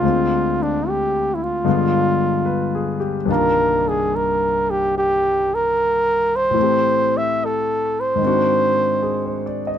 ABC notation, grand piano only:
X:1
M:4/4
L:1/16
Q:"Swing" 1/4=73
K:Cm
V:1 name="Grand piano"
z12 (3=B2 A2 G2- | G z12 z3 | z12 A c d e |]
V:2 name="Grand piano" clef=bass
[D,,D,A,CF]8 [G,,D,A,=B,F]8 | [C,,G,,E,B,DF]16 | [=A,,=E,=A,CG]8 [_A,,_E,CD_G]8 |]